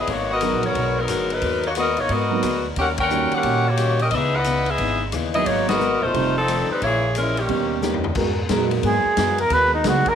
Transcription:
0.07 G#1 G#3 A#3 B3 D#4 F#4 A#4 C#5, kick, ride
0.31 B3 F#4 A#4 D#5
0.41 F#3 G#3 B3 D#4 F#4 A#4, hi-hat pedal, ride
0.53 A#1
0.63 G1 B3 F#4 A#4 C#5, ride
0.75 B1 G#3 B3 F#4 A#4, kick, ride
0.99 F#3 B3 D#4 A#4
1.08 G1 G#3 B3 F#4 A#4, cross-stick, hi-hat pedal, ride
1.30 F#3 D#4 A#4 B4, ride
1.42 D#2 G#3 B3 F#4 A#4, kick, ride
1.63 A#3 D#4 F#4 C#5, ride
1.75 G#3 B3 F#4 A#4 D#5, hi-hat pedal, ride
1.97 A1 A#3 D#4 F#4 C#5, ride
2.09 G#2 G#3 B3 F#4 A#4 D#5, kick, ride
2.31 F#3 A#3 B3 D#4
2.43 D2 G#3 B3 F#4 A#4, cross-stick, hi-hat pedal, ride
2.76 D#2 D#3 G3 C#4 F#4 G4 A#4 F#5, kick, ride
2.98 C#4 A#4 F#5 G5, kick, ride
3.10 D#3 G3 A#3 C#4 F#4, hi-hat pedal
3.31 C#4 G4 A#4 F#5, muted upright bass stroke, ride
3.43 A#2 D#3 G3 C#4 F#4, kick, ride
3.68 A#3 F#4 G4 C#5
3.77 D#3 G3 C#4 F#4, cross-stick, hi-hat pedal, ride
3.99 C#4 G4 A#4 D#5, ride
4.11 C#2 C#3 E3 B3 D#4 D#5, kick, ride
4.15 B3 D#4 G#4 E5
4.36 E4 B4 D#5 F#5
4.44 C#3 E3 B3 D#4, hi-hat pedal, ride
4.66 ride
4.70 B3 G#4 D#5 E5
4.78 G#1 C#3 E3 B3 D#4, kick, ride
5.12 D#2 C#3 E3 B3 D#4, cross-stick, hi-hat pedal, ride
5.34 F#3 A#3 B3 D#4 E4 G#4 D#5, ride
5.45 G#1 G#3 A#3 B3 D#4 F#4 A#4 C#5, kick, ride
5.68 B3 F#4 A#4 D#5, snare, ride
5.79 G#3 B3 F#4 A#4, hi-hat pedal
6.02 E1 A3 D#4 F4 C5
6.13 F1 F2 D#3 G3 A3 C4 D#4, kick, ride
6.36 F3 C4 D#4 A4
6.48 F2 D#3 A3 C4, cross-stick, hi-hat pedal, ride
6.70 G3 C4 D#4 B4, muted upright bass stroke
6.81 A#1 A#2 E3 G#3 A#3 C#4 E4 G#4 C#5, kick, ride
7.15 A#2 E3 G#3 C#4 E4 A#4, hi-hat pedal, ride
7.37 D#3 A#3 C#4 G4, ride
7.48 D#2 B2 D#3 G3 A#3 B3 C#4 G4, kick, ride
7.82 D#3 G3 A#3 B3 C#4 D#4 G4, snare, hi-hat pedal
7.94 floor tom
8.04 floor tom
8.15 G#2 G#3 B3 F#4 A#4, kick, crash
8.49 A#2 F#3 G#3 A#3 B3 D#4 F#4 G#4 A#4, kick, snare, hi-hat pedal, ride
8.71 ride
8.82 G#2 G#3 B3 F#4 A#4, kick, ride
8.87 G#4
9.05 muted upright bass stroke
9.16 F#2 G#3 B3 F#4 A#4, kick, snare, hi-hat pedal, ride
9.38 A#4, ride
9.50 D#2 G#3 B3 F#4 A#4 B4, kick, ride
9.74 D#4
9.84 C#2 F#3 G#3 A#3 B3 D#4 F#4 G#4 A#4, kick, snare, hi-hat pedal, ride
10.06 A#4, muted upright bass stroke, kick, ride

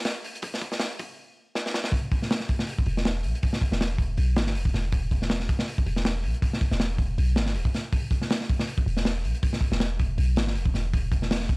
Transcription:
0.05 snare, open hi-hat
0.24 open hi-hat
0.35 closed hi-hat
0.42 kick, open hi-hat
0.54 snare
0.61 kick, open hi-hat
0.72 snare
0.80 snare, open hi-hat
0.99 kick, open hi-hat
1.55 snare
1.66 snare
1.74 snare
1.84 snare
1.92 kick, open hi-hat
2.12 kick, open hi-hat
2.22 snare
2.31 snare, open hi-hat
2.40 snare
2.49 kick, open hi-hat
2.59 snare
2.67 open hi-hat
2.79 kick
2.86 E1, open hi-hat
2.97 snare
3.05 snare, open hi-hat
3.23 B1, open hi-hat
3.35 closed hi-hat
3.43 kick, open hi-hat
3.53 snare
3.61 kick, open hi-hat
3.72 E1, snare
3.81 snare, open hi-hat
3.98 kick, open hi-hat
4.17 B1, open hi-hat
4.36 G1, snare, open hi-hat
4.47 snare
4.55 E1, open hi-hat
4.65 kick
4.74 E1, snare, open hi-hat
4.92 kick, open hi-hat
5.11 kick, open hi-hat
5.22 snare
5.30 snare, open hi-hat
5.40 snare
5.49 kick, open hi-hat
5.59 snare
5.68 open hi-hat
5.78 kick
5.86 E1, open hi-hat
5.96 snare
6.05 snare, open hi-hat
6.23 B1, open hi-hat
6.34 closed hi-hat
6.42 kick, open hi-hat
6.53 snare
6.61 kick, open hi-hat
6.71 E1, snare
6.80 snare, open hi-hat
6.98 kick, open hi-hat
7.18 B1, open hi-hat
7.36 G1, snare, open hi-hat
7.46 snare
7.55 D1, open hi-hat
7.65 kick
7.74 snare, open hi-hat
7.92 kick, open hi-hat
8.11 kick, open hi-hat
8.22 snare
8.30 snare, open hi-hat
8.41 snare
8.49 kick, open hi-hat
8.59 snare
8.67 open hi-hat
8.78 kick
8.86 E1, open hi-hat
8.97 snare
9.05 snare, open hi-hat
9.24 B1, open hi-hat
9.35 closed hi-hat
9.43 kick, open hi-hat
9.53 snare
9.61 kick, open hi-hat
9.72 E1, snare
9.80 snare, open hi-hat
9.99 kick, open hi-hat
10.18 B1, open hi-hat
10.36 G1, snare, open hi-hat
10.47 snare
10.55 E1, open hi-hat
10.66 kick
10.74 E1, snare, open hi-hat
10.94 kick, open hi-hat
11.12 kick, open hi-hat
11.22 snare
11.31 snare, open hi-hat
11.40 snare
11.49 kick, open hi-hat

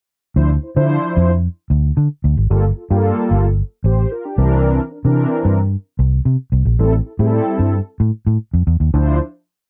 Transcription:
0.36 D2 F3 D4 E4 C5
0.62 E4 C5
0.76 D3 F3 D4 E4 C5
1.17 F2
1.70 D2
1.97 D3
2.24 D2
2.37 G#1
2.50 G1 G3 A#3 F4 A4
2.77 F4 A4
2.90 G2 G3 A#3 F4 G4
2.97 A4
3.31 G1
3.84 A1 G4 C5
4.11 F4 A#4
4.25 D4 G4
4.38 C2 E3 C4 D4 A#4
4.91 D4 A#4
5.04 C3 E3 C4 D4 A#4
5.45 G2
5.99 C2
6.25 C3
6.52 C2
6.65 A#1
6.79 A1 G3 C4 E4 A4
7.05 E4 A4
7.19 A2 G3 C4 E4 G#4
7.26 A4
7.59 G2
8.00 A2
8.27 A2
8.54 F2
8.67 E2
8.80 D#2
8.94 D2 F3 D4 E4 C5

